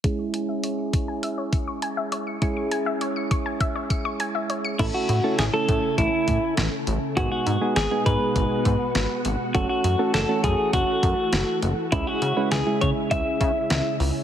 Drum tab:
CC |--------|--------|x-------|--------|
HH |xxxxxxxx|xxxxxxxx|xxxxxxxx|xxxxxxxx|
SD |--------|--------|--o---o-|--o---o-|
BD |o--o-o--|o--ooo--|o--ooo--|o--ooo--|

CC |--------|--------|
HH |xxxxxxxx|xxxxxxxo|
SD |--o---o-|--o---o-|
BD |o--ooo--|o--ooo--|